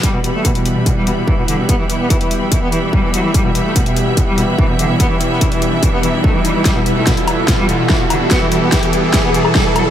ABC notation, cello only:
X:1
M:4/4
L:1/16
Q:1/4=145
K:Em
V:1 name="Cello" clef=bass
G, B,, B,, A, B,, B,, z B,, B,, G, B,, B,, E, B,, D, B,, | B, E, E, B, E, E, z E, E, B, E, E, G, E, F, E, | G, B,, B,, A, B,, B,, z B,, B,, G, B,, B,, E, B,, D, B,, | B, E, E, B, E, E, z E, E, B, E, E, A, E, G, E, |
G, B,, B,, A, B,, B,, z B,, B,, G, B,, B,, E, B,, D, B,, | B, E, E, B, E, E, z E, E, B, E, E, G, E, F, E, |]